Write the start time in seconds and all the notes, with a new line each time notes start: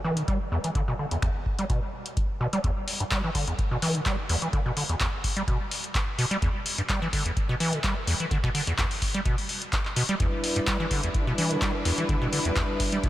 0.04 E3
0.17 D3, closed hi-hat
0.28 G3, kick, closed hi-hat
0.52 E2
0.64 E3, closed hi-hat
0.75 D3, kick, closed hi-hat
0.88 B2
0.99 D3
1.11 E2, closed hi-hat
1.22 E2, finger snap, kick, closed hi-hat
1.46 kick
1.59 G3, closed hi-hat
1.70 B2, kick, closed hi-hat
2.06 closed hi-hat
2.17 kick, closed hi-hat
2.41 B2
2.53 G3, closed hi-hat
2.64 E2, kick, closed hi-hat
2.88 open hi-hat
3.00 G2, closed hi-hat
3.11 G3, finger snap, kick, clap, closed hi-hat
3.24 E3
3.35 D3, kick, open hi-hat
3.48 E2, closed hi-hat
3.59 kick, closed hi-hat
3.71 B2
3.82 E3, open hi-hat
3.95 D3, closed hi-hat
4.06 G3, kick, clap, closed hi-hat
4.29 E2, open hi-hat
4.42 E3, closed hi-hat
4.53 D3, kick, closed hi-hat
4.66 B2
4.77 D3, open hi-hat
4.89 E2, closed hi-hat
5.00 E2, finger snap, kick, clap, closed hi-hat
5.24 kick, open hi-hat
5.37 G3, closed hi-hat
5.48 B2, kick, closed hi-hat
5.71 open hi-hat
5.84 closed hi-hat
5.95 kick, clap, closed hi-hat
6.18 B2, open hi-hat
6.31 G3, closed hi-hat
6.42 E2, kick, closed hi-hat
6.66 open hi-hat
6.78 G2, closed hi-hat
6.89 G3, finger snap, kick, clap, closed hi-hat
7.02 E3
7.13 D3, kick, open hi-hat
7.25 E2, closed hi-hat
7.37 kick, closed hi-hat
7.49 B2
7.60 E3, open hi-hat
7.73 D3, closed hi-hat
7.84 G3, kick, clap, closed hi-hat
8.07 E2, open hi-hat
8.20 E3, closed hi-hat
8.31 D3, kick, closed hi-hat
8.44 B2, finger snap, kick
8.55 D3, open hi-hat
8.67 E2, closed hi-hat
8.78 E2, finger snap, kick, clap, closed hi-hat
8.91 open hi-hat
9.02 kick, open hi-hat
9.14 G3, closed hi-hat
9.26 B2, kick, closed hi-hat
9.38 open hi-hat
9.49 open hi-hat
9.62 closed hi-hat
9.73 kick, clap, closed hi-hat
9.85 clap
9.96 B2, open hi-hat
10.09 G3, closed hi-hat
10.20 E2 G3 D4 E4 B4, kick, closed hi-hat
10.44 open hi-hat
10.56 G2, closed hi-hat
10.67 G3, finger snap, kick, clap, closed hi-hat
10.80 E3
10.91 D3, kick, open hi-hat
11.03 E2, closed hi-hat
11.14 kick, closed hi-hat
11.27 B2
11.38 E3, open hi-hat
11.51 D3, closed hi-hat
11.62 G3, kick, clap, closed hi-hat
11.85 E2, open hi-hat
11.98 E3, closed hi-hat
12.09 D3, kick, closed hi-hat
12.22 B2
12.33 D3, open hi-hat
12.45 E2, closed hi-hat
12.56 E2, finger snap, kick, clap, closed hi-hat
12.80 kick, open hi-hat
12.92 G3, closed hi-hat
13.04 B2, kick, closed hi-hat